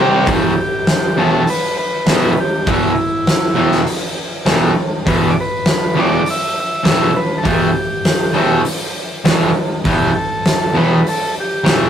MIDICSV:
0, 0, Header, 1, 4, 480
1, 0, Start_track
1, 0, Key_signature, 1, "minor"
1, 0, Tempo, 598802
1, 223, Time_signature, 4, 2, 24, 8
1, 9535, End_track
2, 0, Start_track
2, 0, Title_t, "Transistor combo organ"
2, 0, Program_c, 0, 18
2, 273, Note_on_c, 0, 67, 93
2, 475, Note_off_c, 0, 67, 0
2, 485, Note_on_c, 0, 67, 93
2, 951, Note_on_c, 0, 69, 95
2, 968, Note_off_c, 0, 67, 0
2, 1194, Note_off_c, 0, 69, 0
2, 1199, Note_on_c, 0, 71, 106
2, 1420, Note_off_c, 0, 71, 0
2, 1429, Note_on_c, 0, 71, 96
2, 1921, Note_off_c, 0, 71, 0
2, 1924, Note_on_c, 0, 67, 90
2, 2161, Note_off_c, 0, 67, 0
2, 2167, Note_on_c, 0, 64, 78
2, 3084, Note_off_c, 0, 64, 0
2, 4067, Note_on_c, 0, 71, 95
2, 4248, Note_on_c, 0, 74, 73
2, 4254, Note_off_c, 0, 71, 0
2, 4305, Note_off_c, 0, 74, 0
2, 4334, Note_on_c, 0, 71, 95
2, 4804, Note_on_c, 0, 74, 101
2, 4813, Note_off_c, 0, 71, 0
2, 5041, Note_off_c, 0, 74, 0
2, 5054, Note_on_c, 0, 76, 113
2, 5283, Note_off_c, 0, 76, 0
2, 5293, Note_on_c, 0, 76, 106
2, 5742, Note_on_c, 0, 71, 89
2, 5772, Note_off_c, 0, 76, 0
2, 5915, Note_on_c, 0, 69, 59
2, 5931, Note_off_c, 0, 71, 0
2, 5978, Note_off_c, 0, 69, 0
2, 5992, Note_on_c, 0, 67, 76
2, 6915, Note_off_c, 0, 67, 0
2, 7911, Note_on_c, 0, 67, 79
2, 8139, Note_on_c, 0, 69, 83
2, 8153, Note_off_c, 0, 67, 0
2, 8632, Note_on_c, 0, 71, 90
2, 8634, Note_off_c, 0, 69, 0
2, 8873, Note_off_c, 0, 71, 0
2, 8884, Note_on_c, 0, 69, 94
2, 9096, Note_off_c, 0, 69, 0
2, 9139, Note_on_c, 0, 67, 88
2, 9535, Note_off_c, 0, 67, 0
2, 9535, End_track
3, 0, Start_track
3, 0, Title_t, "Distorted electric guitar"
3, 0, Program_c, 1, 30
3, 0, Note_on_c, 1, 48, 93
3, 0, Note_on_c, 1, 55, 92
3, 0, Note_on_c, 1, 60, 116
3, 212, Note_off_c, 1, 48, 0
3, 216, Note_off_c, 1, 55, 0
3, 217, Note_on_c, 1, 40, 81
3, 220, Note_off_c, 1, 60, 0
3, 226, Note_on_c, 1, 47, 94
3, 232, Note_on_c, 1, 52, 90
3, 412, Note_off_c, 1, 40, 0
3, 416, Note_off_c, 1, 47, 0
3, 419, Note_off_c, 1, 52, 0
3, 935, Note_on_c, 1, 40, 94
3, 941, Note_on_c, 1, 47, 93
3, 948, Note_on_c, 1, 52, 99
3, 1131, Note_off_c, 1, 40, 0
3, 1134, Note_off_c, 1, 47, 0
3, 1137, Note_off_c, 1, 52, 0
3, 1657, Note_on_c, 1, 40, 85
3, 1664, Note_on_c, 1, 47, 101
3, 1670, Note_on_c, 1, 52, 100
3, 1852, Note_off_c, 1, 40, 0
3, 1855, Note_off_c, 1, 47, 0
3, 1858, Note_off_c, 1, 52, 0
3, 2138, Note_on_c, 1, 40, 77
3, 2144, Note_on_c, 1, 47, 90
3, 2145, Note_on_c, 1, 52, 86
3, 2332, Note_off_c, 1, 40, 0
3, 2336, Note_off_c, 1, 47, 0
3, 2337, Note_off_c, 1, 52, 0
3, 2847, Note_on_c, 1, 40, 90
3, 2857, Note_on_c, 1, 47, 95
3, 2860, Note_on_c, 1, 52, 112
3, 3047, Note_off_c, 1, 40, 0
3, 3053, Note_off_c, 1, 47, 0
3, 3054, Note_off_c, 1, 52, 0
3, 3573, Note_on_c, 1, 40, 94
3, 3575, Note_on_c, 1, 47, 95
3, 3586, Note_on_c, 1, 52, 100
3, 3770, Note_off_c, 1, 40, 0
3, 3772, Note_off_c, 1, 47, 0
3, 3777, Note_off_c, 1, 52, 0
3, 4054, Note_on_c, 1, 40, 77
3, 4064, Note_on_c, 1, 47, 87
3, 4068, Note_on_c, 1, 52, 88
3, 4251, Note_off_c, 1, 40, 0
3, 4256, Note_off_c, 1, 47, 0
3, 4258, Note_off_c, 1, 52, 0
3, 4765, Note_on_c, 1, 40, 104
3, 4775, Note_on_c, 1, 47, 99
3, 4782, Note_on_c, 1, 52, 108
3, 4966, Note_off_c, 1, 40, 0
3, 4971, Note_off_c, 1, 47, 0
3, 4975, Note_off_c, 1, 52, 0
3, 5478, Note_on_c, 1, 40, 85
3, 5486, Note_on_c, 1, 47, 98
3, 5492, Note_on_c, 1, 52, 106
3, 5682, Note_off_c, 1, 40, 0
3, 5686, Note_off_c, 1, 47, 0
3, 5690, Note_off_c, 1, 52, 0
3, 5961, Note_on_c, 1, 40, 73
3, 5964, Note_on_c, 1, 47, 98
3, 5970, Note_on_c, 1, 52, 89
3, 6164, Note_off_c, 1, 40, 0
3, 6165, Note_off_c, 1, 47, 0
3, 6168, Note_off_c, 1, 52, 0
3, 6677, Note_on_c, 1, 40, 94
3, 6686, Note_on_c, 1, 47, 96
3, 6693, Note_on_c, 1, 52, 104
3, 6882, Note_off_c, 1, 40, 0
3, 6886, Note_off_c, 1, 47, 0
3, 6890, Note_off_c, 1, 52, 0
3, 7410, Note_on_c, 1, 40, 93
3, 7414, Note_on_c, 1, 47, 89
3, 7419, Note_on_c, 1, 52, 96
3, 7607, Note_off_c, 1, 40, 0
3, 7610, Note_off_c, 1, 47, 0
3, 7612, Note_off_c, 1, 52, 0
3, 7889, Note_on_c, 1, 40, 81
3, 7900, Note_on_c, 1, 47, 93
3, 7901, Note_on_c, 1, 52, 94
3, 8087, Note_off_c, 1, 40, 0
3, 8092, Note_off_c, 1, 47, 0
3, 8093, Note_off_c, 1, 52, 0
3, 8605, Note_on_c, 1, 40, 91
3, 8612, Note_on_c, 1, 47, 92
3, 8620, Note_on_c, 1, 52, 107
3, 8804, Note_off_c, 1, 40, 0
3, 8808, Note_off_c, 1, 47, 0
3, 8812, Note_off_c, 1, 52, 0
3, 9330, Note_on_c, 1, 40, 88
3, 9331, Note_on_c, 1, 47, 99
3, 9342, Note_on_c, 1, 52, 101
3, 9526, Note_off_c, 1, 40, 0
3, 9527, Note_off_c, 1, 47, 0
3, 9532, Note_off_c, 1, 52, 0
3, 9535, End_track
4, 0, Start_track
4, 0, Title_t, "Drums"
4, 210, Note_on_c, 9, 46, 56
4, 218, Note_on_c, 9, 36, 113
4, 290, Note_off_c, 9, 46, 0
4, 298, Note_off_c, 9, 36, 0
4, 697, Note_on_c, 9, 46, 49
4, 700, Note_on_c, 9, 38, 104
4, 777, Note_off_c, 9, 46, 0
4, 780, Note_off_c, 9, 38, 0
4, 1180, Note_on_c, 9, 46, 55
4, 1260, Note_off_c, 9, 46, 0
4, 1655, Note_on_c, 9, 46, 56
4, 1657, Note_on_c, 9, 38, 106
4, 1735, Note_off_c, 9, 46, 0
4, 1737, Note_off_c, 9, 38, 0
4, 2141, Note_on_c, 9, 36, 107
4, 2142, Note_on_c, 9, 46, 54
4, 2221, Note_off_c, 9, 36, 0
4, 2223, Note_off_c, 9, 46, 0
4, 2622, Note_on_c, 9, 46, 50
4, 2624, Note_on_c, 9, 38, 94
4, 2702, Note_off_c, 9, 46, 0
4, 2704, Note_off_c, 9, 38, 0
4, 2980, Note_on_c, 9, 38, 32
4, 3060, Note_off_c, 9, 38, 0
4, 3099, Note_on_c, 9, 46, 60
4, 3179, Note_off_c, 9, 46, 0
4, 3576, Note_on_c, 9, 46, 56
4, 3578, Note_on_c, 9, 38, 106
4, 3656, Note_off_c, 9, 46, 0
4, 3658, Note_off_c, 9, 38, 0
4, 4062, Note_on_c, 9, 36, 106
4, 4062, Note_on_c, 9, 46, 50
4, 4142, Note_off_c, 9, 36, 0
4, 4142, Note_off_c, 9, 46, 0
4, 4534, Note_on_c, 9, 46, 53
4, 4536, Note_on_c, 9, 38, 103
4, 4614, Note_off_c, 9, 46, 0
4, 4616, Note_off_c, 9, 38, 0
4, 5019, Note_on_c, 9, 46, 55
4, 5100, Note_off_c, 9, 46, 0
4, 5492, Note_on_c, 9, 46, 58
4, 5494, Note_on_c, 9, 38, 107
4, 5572, Note_off_c, 9, 46, 0
4, 5574, Note_off_c, 9, 38, 0
4, 5974, Note_on_c, 9, 36, 109
4, 5974, Note_on_c, 9, 46, 60
4, 6054, Note_off_c, 9, 46, 0
4, 6055, Note_off_c, 9, 36, 0
4, 6453, Note_on_c, 9, 46, 60
4, 6455, Note_on_c, 9, 38, 93
4, 6533, Note_off_c, 9, 46, 0
4, 6535, Note_off_c, 9, 38, 0
4, 6933, Note_on_c, 9, 46, 61
4, 7013, Note_off_c, 9, 46, 0
4, 7417, Note_on_c, 9, 46, 59
4, 7419, Note_on_c, 9, 38, 114
4, 7497, Note_off_c, 9, 46, 0
4, 7500, Note_off_c, 9, 38, 0
4, 7895, Note_on_c, 9, 46, 58
4, 7898, Note_on_c, 9, 36, 115
4, 7975, Note_off_c, 9, 46, 0
4, 7978, Note_off_c, 9, 36, 0
4, 8380, Note_on_c, 9, 46, 53
4, 8383, Note_on_c, 9, 38, 103
4, 8460, Note_off_c, 9, 46, 0
4, 8463, Note_off_c, 9, 38, 0
4, 8871, Note_on_c, 9, 46, 54
4, 8951, Note_off_c, 9, 46, 0
4, 9347, Note_on_c, 9, 46, 51
4, 9350, Note_on_c, 9, 38, 113
4, 9427, Note_off_c, 9, 46, 0
4, 9430, Note_off_c, 9, 38, 0
4, 9535, End_track
0, 0, End_of_file